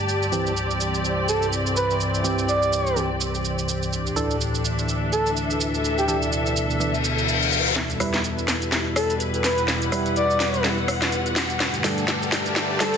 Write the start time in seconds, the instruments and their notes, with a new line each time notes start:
Already playing: analog synth pad G2, string section G4 D5 A5
0.08 analog synth pad C2 E3, string section C4, shaker
0.23 shaker
0.32 synth stab E3 C4 G4, shaker
0.47 shaker
0.57 shaker
0.71 shaker
0.81 shaker
0.94 shaker
1.05 shaker
1.28 soft synth lead A4, shaker
1.42 shaker
1.53 shaker
1.66 shaker
1.76 soft synth lead B4, shaker
1.90 shaker
2.01 shaker
2.14 shaker
2.24 synth stab E3 C4 G4, shaker
2.38 shaker
2.48 soft synth lead D5, shaker
2.63 shaker
2.73 shaker
2.87 shaker
2.96 synth stab E3 C4 G4, shaker
3.21 shaker
3.35 shaker
3.45 shaker
3.59 shaker
3.69 shaker
3.83 shaker
3.92 analog synth pad D2 A2 E3, string section D4, shaker
4.07 shaker
4.16 synth stab E3 D4 A4, shaker
4.31 string section A4, shaker
4.41 shaker
4.55 shaker
4.63 string section E5, shaker
4.79 shaker
4.89 shaker
5.12 soft synth lead A4, shaker
5.27 shaker
5.37 shaker
5.51 shaker
5.61 shaker
5.74 shaker
5.84 analog synth pad B2, shaker
5.98 soft synth lead G4, shaker
6.08 synth stab E3 D4 A4, soft synth lead G4, shaker
6.22 shaker
6.33 shaker
6.46 shaker
6.57 shaker
6.70 shaker
6.80 synth stab E3 D4 A4, reverse cymbal, shaker
6.94 shaker
7.05 shaker
7.18 shaker
7.29 shaker
7.42 shaker
7.53 shaker
7.66 shaker
7.76 analog synth pad E2 B2 G3, string section E4, snare, closed hi-hat, riser, shaker
7.90 closed hi-hat, shaker
8.00 synth stab G3 E4 B4, cross-stick, open hi-hat, shaker
8.14 snare, closed hi-hat, shaker
8.24 string section B4, closed hi-hat, shaker
8.38 shaker
8.48 snare, open hi-hat, shaker
8.62 closed hi-hat, shaker
8.72 snare, closed hi-hat, shaker
8.96 soft synth lead A4, cross-stick, open hi-hat, shaker
9.10 closed hi-hat, shaker
9.20 closed hi-hat, shaker
9.34 closed hi-hat, shaker
9.44 soft synth lead B4, string section F#5, snare, open hi-hat, shaker
9.58 closed hi-hat, shaker
9.68 snare, closed hi-hat, shaker
9.82 closed hi-hat, shaker
9.92 synth stab G3 E4 B4, cross-stick, open hi-hat, shaker
10.06 closed hi-hat, shaker
10.16 soft synth lead D5, closed hi-hat, shaker
10.30 shaker
10.40 snare, open hi-hat, shaker
10.54 closed hi-hat, shaker
10.64 synth stab G3 E4 B4, snare, closed hi-hat, shaker
10.88 cross-stick, open hi-hat, shaker
11.02 snare, closed hi-hat, shaker
11.12 closed hi-hat, shaker
11.26 closed hi-hat, shaker
11.36 snare, open hi-hat, shaker
11.50 closed hi-hat, shaker
11.60 analog synth pad G2 D3 A3, string section G4, snare, closed hi-hat, shaker
11.74 closed hi-hat, shaker
11.84 synth stab G3 D4 A4, string section A5, snare, open hi-hat, shaker
11.98 closed hi-hat, shaker
12.07 string section D5, snare, closed hi-hat, shaker
12.22 shaker
12.32 snare, open hi-hat, shaker
12.46 closed hi-hat, shaker
12.56 snare, closed hi-hat, shaker
12.80 synth stab G3 D4 A4, soft synth lead A4, snare, open hi-hat, shaker
12.94 closed hi-hat